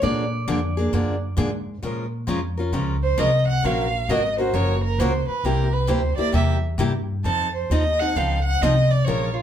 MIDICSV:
0, 0, Header, 1, 6, 480
1, 0, Start_track
1, 0, Key_signature, -5, "minor"
1, 0, Tempo, 452386
1, 15, Time_signature, 4, 2, 24, 8
1, 9997, End_track
2, 0, Start_track
2, 0, Title_t, "Steel-string acoustic guitar"
2, 0, Program_c, 0, 25
2, 33, Note_on_c, 0, 74, 85
2, 1422, Note_off_c, 0, 74, 0
2, 9997, End_track
3, 0, Start_track
3, 0, Title_t, "Violin"
3, 0, Program_c, 1, 40
3, 3218, Note_on_c, 1, 72, 82
3, 3381, Note_on_c, 1, 75, 87
3, 3397, Note_off_c, 1, 72, 0
3, 3682, Note_off_c, 1, 75, 0
3, 3688, Note_on_c, 1, 78, 94
3, 3877, Note_on_c, 1, 77, 85
3, 3893, Note_off_c, 1, 78, 0
3, 4348, Note_on_c, 1, 75, 75
3, 4364, Note_off_c, 1, 77, 0
3, 4653, Note_off_c, 1, 75, 0
3, 4658, Note_on_c, 1, 72, 76
3, 4830, Note_on_c, 1, 73, 82
3, 4846, Note_off_c, 1, 72, 0
3, 5125, Note_off_c, 1, 73, 0
3, 5131, Note_on_c, 1, 70, 77
3, 5293, Note_on_c, 1, 72, 85
3, 5309, Note_off_c, 1, 70, 0
3, 5598, Note_off_c, 1, 72, 0
3, 5604, Note_on_c, 1, 71, 80
3, 5779, Note_on_c, 1, 70, 76
3, 5795, Note_off_c, 1, 71, 0
3, 6075, Note_on_c, 1, 71, 84
3, 6091, Note_off_c, 1, 70, 0
3, 6250, Note_on_c, 1, 72, 74
3, 6266, Note_off_c, 1, 71, 0
3, 6545, Note_off_c, 1, 72, 0
3, 6552, Note_on_c, 1, 74, 89
3, 6715, Note_off_c, 1, 74, 0
3, 6726, Note_on_c, 1, 76, 86
3, 6915, Note_off_c, 1, 76, 0
3, 7697, Note_on_c, 1, 81, 84
3, 7986, Note_off_c, 1, 81, 0
3, 8012, Note_on_c, 1, 72, 68
3, 8182, Note_on_c, 1, 75, 82
3, 8197, Note_off_c, 1, 72, 0
3, 8476, Note_on_c, 1, 78, 93
3, 8492, Note_off_c, 1, 75, 0
3, 8664, Note_on_c, 1, 77, 79
3, 8680, Note_off_c, 1, 78, 0
3, 8947, Note_off_c, 1, 77, 0
3, 8954, Note_on_c, 1, 78, 101
3, 9148, Note_on_c, 1, 75, 90
3, 9164, Note_off_c, 1, 78, 0
3, 9448, Note_on_c, 1, 74, 82
3, 9464, Note_off_c, 1, 75, 0
3, 9597, Note_on_c, 1, 73, 81
3, 9613, Note_off_c, 1, 74, 0
3, 9907, Note_on_c, 1, 65, 67
3, 9923, Note_off_c, 1, 73, 0
3, 9997, Note_off_c, 1, 65, 0
3, 9997, End_track
4, 0, Start_track
4, 0, Title_t, "Steel-string acoustic guitar"
4, 0, Program_c, 2, 25
4, 17, Note_on_c, 2, 53, 70
4, 18, Note_on_c, 2, 50, 63
4, 23, Note_on_c, 2, 58, 69
4, 29, Note_on_c, 2, 62, 77
4, 37, Note_on_c, 2, 68, 72
4, 249, Note_off_c, 2, 50, 0
4, 249, Note_off_c, 2, 53, 0
4, 252, Note_off_c, 2, 58, 0
4, 255, Note_off_c, 2, 62, 0
4, 259, Note_off_c, 2, 68, 0
4, 506, Note_on_c, 2, 50, 81
4, 506, Note_on_c, 2, 53, 77
4, 506, Note_on_c, 2, 58, 82
4, 509, Note_on_c, 2, 68, 88
4, 510, Note_on_c, 2, 62, 90
4, 624, Note_off_c, 2, 50, 0
4, 624, Note_off_c, 2, 53, 0
4, 624, Note_off_c, 2, 58, 0
4, 625, Note_off_c, 2, 68, 0
4, 626, Note_off_c, 2, 62, 0
4, 818, Note_on_c, 2, 68, 58
4, 834, Note_on_c, 2, 62, 49
4, 837, Note_on_c, 2, 58, 43
4, 974, Note_off_c, 2, 68, 0
4, 976, Note_off_c, 2, 58, 0
4, 979, Note_off_c, 2, 62, 0
4, 984, Note_on_c, 2, 50, 66
4, 987, Note_on_c, 2, 53, 64
4, 988, Note_on_c, 2, 58, 66
4, 992, Note_on_c, 2, 62, 72
4, 995, Note_on_c, 2, 68, 74
4, 1212, Note_off_c, 2, 50, 0
4, 1214, Note_off_c, 2, 53, 0
4, 1215, Note_off_c, 2, 58, 0
4, 1216, Note_off_c, 2, 62, 0
4, 1218, Note_off_c, 2, 68, 0
4, 1449, Note_on_c, 2, 50, 82
4, 1458, Note_on_c, 2, 58, 87
4, 1459, Note_on_c, 2, 53, 81
4, 1460, Note_on_c, 2, 62, 90
4, 1468, Note_on_c, 2, 68, 94
4, 1576, Note_off_c, 2, 50, 0
4, 1580, Note_off_c, 2, 53, 0
4, 1580, Note_off_c, 2, 58, 0
4, 1581, Note_off_c, 2, 62, 0
4, 1585, Note_off_c, 2, 68, 0
4, 1937, Note_on_c, 2, 53, 64
4, 1944, Note_on_c, 2, 56, 63
4, 1948, Note_on_c, 2, 61, 61
4, 1949, Note_on_c, 2, 65, 65
4, 1955, Note_on_c, 2, 70, 65
4, 2169, Note_off_c, 2, 53, 0
4, 2172, Note_off_c, 2, 56, 0
4, 2174, Note_off_c, 2, 61, 0
4, 2175, Note_off_c, 2, 65, 0
4, 2178, Note_off_c, 2, 70, 0
4, 2407, Note_on_c, 2, 53, 70
4, 2415, Note_on_c, 2, 56, 75
4, 2419, Note_on_c, 2, 70, 88
4, 2423, Note_on_c, 2, 61, 76
4, 2427, Note_on_c, 2, 65, 82
4, 2534, Note_off_c, 2, 53, 0
4, 2538, Note_off_c, 2, 56, 0
4, 2540, Note_off_c, 2, 70, 0
4, 2542, Note_off_c, 2, 61, 0
4, 2544, Note_off_c, 2, 65, 0
4, 2732, Note_on_c, 2, 70, 47
4, 2747, Note_on_c, 2, 65, 46
4, 2757, Note_on_c, 2, 61, 41
4, 2889, Note_off_c, 2, 61, 0
4, 2891, Note_off_c, 2, 65, 0
4, 2891, Note_off_c, 2, 70, 0
4, 2893, Note_on_c, 2, 53, 60
4, 2897, Note_on_c, 2, 56, 69
4, 2901, Note_on_c, 2, 61, 66
4, 2904, Note_on_c, 2, 65, 69
4, 2905, Note_on_c, 2, 70, 76
4, 3127, Note_off_c, 2, 53, 0
4, 3129, Note_off_c, 2, 56, 0
4, 3131, Note_off_c, 2, 61, 0
4, 3132, Note_off_c, 2, 65, 0
4, 3133, Note_off_c, 2, 70, 0
4, 3370, Note_on_c, 2, 53, 78
4, 3370, Note_on_c, 2, 56, 88
4, 3371, Note_on_c, 2, 61, 84
4, 3378, Note_on_c, 2, 65, 79
4, 3384, Note_on_c, 2, 70, 92
4, 3496, Note_off_c, 2, 53, 0
4, 3496, Note_off_c, 2, 56, 0
4, 3496, Note_off_c, 2, 61, 0
4, 3500, Note_off_c, 2, 65, 0
4, 3503, Note_off_c, 2, 70, 0
4, 3862, Note_on_c, 2, 58, 64
4, 3866, Note_on_c, 2, 53, 63
4, 3870, Note_on_c, 2, 61, 69
4, 3870, Note_on_c, 2, 66, 70
4, 3874, Note_on_c, 2, 70, 67
4, 4091, Note_off_c, 2, 58, 0
4, 4093, Note_off_c, 2, 53, 0
4, 4095, Note_off_c, 2, 61, 0
4, 4096, Note_off_c, 2, 66, 0
4, 4097, Note_off_c, 2, 70, 0
4, 4342, Note_on_c, 2, 53, 80
4, 4346, Note_on_c, 2, 58, 80
4, 4349, Note_on_c, 2, 61, 79
4, 4357, Note_on_c, 2, 66, 85
4, 4358, Note_on_c, 2, 70, 86
4, 4462, Note_off_c, 2, 53, 0
4, 4464, Note_off_c, 2, 58, 0
4, 4465, Note_off_c, 2, 61, 0
4, 4469, Note_off_c, 2, 66, 0
4, 4470, Note_off_c, 2, 70, 0
4, 4651, Note_on_c, 2, 70, 59
4, 4663, Note_on_c, 2, 66, 49
4, 4673, Note_on_c, 2, 61, 40
4, 4798, Note_off_c, 2, 61, 0
4, 4809, Note_off_c, 2, 66, 0
4, 4811, Note_off_c, 2, 70, 0
4, 4811, Note_on_c, 2, 61, 62
4, 4813, Note_on_c, 2, 53, 61
4, 4813, Note_on_c, 2, 58, 70
4, 4821, Note_on_c, 2, 66, 65
4, 4822, Note_on_c, 2, 70, 76
4, 5046, Note_off_c, 2, 61, 0
4, 5047, Note_off_c, 2, 53, 0
4, 5047, Note_off_c, 2, 58, 0
4, 5051, Note_off_c, 2, 66, 0
4, 5051, Note_off_c, 2, 70, 0
4, 5302, Note_on_c, 2, 53, 84
4, 5303, Note_on_c, 2, 58, 86
4, 5312, Note_on_c, 2, 66, 96
4, 5313, Note_on_c, 2, 61, 90
4, 5322, Note_on_c, 2, 70, 98
4, 5422, Note_off_c, 2, 53, 0
4, 5422, Note_off_c, 2, 58, 0
4, 5427, Note_off_c, 2, 61, 0
4, 5427, Note_off_c, 2, 66, 0
4, 5432, Note_off_c, 2, 70, 0
4, 5777, Note_on_c, 2, 48, 66
4, 5781, Note_on_c, 2, 55, 71
4, 5790, Note_on_c, 2, 64, 65
4, 5791, Note_on_c, 2, 58, 68
4, 5791, Note_on_c, 2, 67, 69
4, 6009, Note_off_c, 2, 48, 0
4, 6011, Note_off_c, 2, 55, 0
4, 6015, Note_off_c, 2, 64, 0
4, 6016, Note_off_c, 2, 58, 0
4, 6016, Note_off_c, 2, 67, 0
4, 6232, Note_on_c, 2, 48, 74
4, 6238, Note_on_c, 2, 55, 78
4, 6241, Note_on_c, 2, 58, 83
4, 6245, Note_on_c, 2, 64, 81
4, 6248, Note_on_c, 2, 67, 88
4, 6367, Note_off_c, 2, 48, 0
4, 6370, Note_off_c, 2, 55, 0
4, 6371, Note_off_c, 2, 58, 0
4, 6373, Note_off_c, 2, 64, 0
4, 6375, Note_off_c, 2, 67, 0
4, 6555, Note_on_c, 2, 67, 54
4, 6562, Note_on_c, 2, 64, 50
4, 6567, Note_on_c, 2, 58, 45
4, 6707, Note_off_c, 2, 64, 0
4, 6710, Note_on_c, 2, 48, 65
4, 6714, Note_off_c, 2, 58, 0
4, 6717, Note_off_c, 2, 67, 0
4, 6720, Note_on_c, 2, 64, 71
4, 6724, Note_on_c, 2, 55, 66
4, 6727, Note_on_c, 2, 58, 69
4, 6729, Note_on_c, 2, 67, 78
4, 6955, Note_off_c, 2, 48, 0
4, 6960, Note_off_c, 2, 64, 0
4, 6962, Note_off_c, 2, 55, 0
4, 6964, Note_off_c, 2, 58, 0
4, 6965, Note_off_c, 2, 67, 0
4, 7193, Note_on_c, 2, 48, 83
4, 7203, Note_on_c, 2, 55, 94
4, 7203, Note_on_c, 2, 58, 86
4, 7211, Note_on_c, 2, 64, 95
4, 7213, Note_on_c, 2, 67, 91
4, 7327, Note_off_c, 2, 48, 0
4, 7332, Note_off_c, 2, 55, 0
4, 7332, Note_off_c, 2, 58, 0
4, 7336, Note_off_c, 2, 64, 0
4, 7337, Note_off_c, 2, 67, 0
4, 7685, Note_on_c, 2, 53, 62
4, 7693, Note_on_c, 2, 60, 68
4, 7697, Note_on_c, 2, 63, 68
4, 7700, Note_on_c, 2, 69, 76
4, 7922, Note_off_c, 2, 53, 0
4, 7927, Note_off_c, 2, 60, 0
4, 7929, Note_off_c, 2, 63, 0
4, 7930, Note_off_c, 2, 69, 0
4, 8180, Note_on_c, 2, 53, 83
4, 8189, Note_on_c, 2, 60, 91
4, 8190, Note_on_c, 2, 69, 86
4, 8193, Note_on_c, 2, 63, 86
4, 8301, Note_off_c, 2, 53, 0
4, 8305, Note_off_c, 2, 60, 0
4, 8305, Note_off_c, 2, 69, 0
4, 8307, Note_off_c, 2, 63, 0
4, 8495, Note_on_c, 2, 69, 52
4, 8505, Note_on_c, 2, 63, 53
4, 8516, Note_on_c, 2, 60, 43
4, 8651, Note_off_c, 2, 63, 0
4, 8652, Note_off_c, 2, 60, 0
4, 8653, Note_off_c, 2, 69, 0
4, 8659, Note_on_c, 2, 53, 69
4, 8664, Note_on_c, 2, 60, 63
4, 8664, Note_on_c, 2, 63, 70
4, 8672, Note_on_c, 2, 69, 70
4, 8890, Note_off_c, 2, 53, 0
4, 8892, Note_off_c, 2, 60, 0
4, 8892, Note_off_c, 2, 63, 0
4, 8896, Note_off_c, 2, 69, 0
4, 9153, Note_on_c, 2, 53, 89
4, 9156, Note_on_c, 2, 60, 91
4, 9165, Note_on_c, 2, 63, 85
4, 9166, Note_on_c, 2, 69, 93
4, 9267, Note_off_c, 2, 53, 0
4, 9269, Note_off_c, 2, 60, 0
4, 9273, Note_off_c, 2, 63, 0
4, 9274, Note_off_c, 2, 69, 0
4, 9623, Note_on_c, 2, 53, 63
4, 9630, Note_on_c, 2, 61, 65
4, 9631, Note_on_c, 2, 70, 77
4, 9632, Note_on_c, 2, 56, 71
4, 9633, Note_on_c, 2, 65, 71
4, 9852, Note_off_c, 2, 53, 0
4, 9855, Note_off_c, 2, 61, 0
4, 9856, Note_off_c, 2, 56, 0
4, 9856, Note_off_c, 2, 70, 0
4, 9857, Note_off_c, 2, 65, 0
4, 9997, End_track
5, 0, Start_track
5, 0, Title_t, "Upright bass"
5, 0, Program_c, 3, 32
5, 30, Note_on_c, 3, 46, 78
5, 488, Note_off_c, 3, 46, 0
5, 505, Note_on_c, 3, 41, 85
5, 966, Note_off_c, 3, 41, 0
5, 984, Note_on_c, 3, 42, 81
5, 1445, Note_off_c, 3, 42, 0
5, 1457, Note_on_c, 3, 44, 90
5, 1922, Note_off_c, 3, 44, 0
5, 1935, Note_on_c, 3, 46, 69
5, 2401, Note_off_c, 3, 46, 0
5, 2413, Note_on_c, 3, 41, 77
5, 2879, Note_off_c, 3, 41, 0
5, 2889, Note_on_c, 3, 37, 81
5, 3357, Note_off_c, 3, 37, 0
5, 3380, Note_on_c, 3, 36, 85
5, 3843, Note_off_c, 3, 36, 0
5, 3858, Note_on_c, 3, 34, 76
5, 4322, Note_off_c, 3, 34, 0
5, 4332, Note_on_c, 3, 32, 81
5, 4799, Note_off_c, 3, 32, 0
5, 4809, Note_on_c, 3, 30, 83
5, 5277, Note_off_c, 3, 30, 0
5, 5290, Note_on_c, 3, 37, 89
5, 5581, Note_off_c, 3, 37, 0
5, 5769, Note_on_c, 3, 36, 82
5, 6237, Note_off_c, 3, 36, 0
5, 6242, Note_on_c, 3, 38, 79
5, 6537, Note_off_c, 3, 38, 0
5, 6716, Note_on_c, 3, 40, 82
5, 7186, Note_off_c, 3, 40, 0
5, 7192, Note_on_c, 3, 43, 90
5, 7669, Note_off_c, 3, 43, 0
5, 7682, Note_on_c, 3, 41, 80
5, 8154, Note_off_c, 3, 41, 0
5, 8169, Note_on_c, 3, 39, 83
5, 8637, Note_off_c, 3, 39, 0
5, 8655, Note_on_c, 3, 37, 75
5, 9120, Note_off_c, 3, 37, 0
5, 9138, Note_on_c, 3, 36, 84
5, 9602, Note_off_c, 3, 36, 0
5, 9616, Note_on_c, 3, 34, 76
5, 9997, Note_off_c, 3, 34, 0
5, 9997, End_track
6, 0, Start_track
6, 0, Title_t, "Muted upright bass strokes"
6, 5596, Note_on_c, 9, 29, 38
6, 5702, Note_off_c, 9, 29, 0
6, 6561, Note_on_c, 9, 29, 40
6, 6667, Note_off_c, 9, 29, 0
6, 9997, End_track
0, 0, End_of_file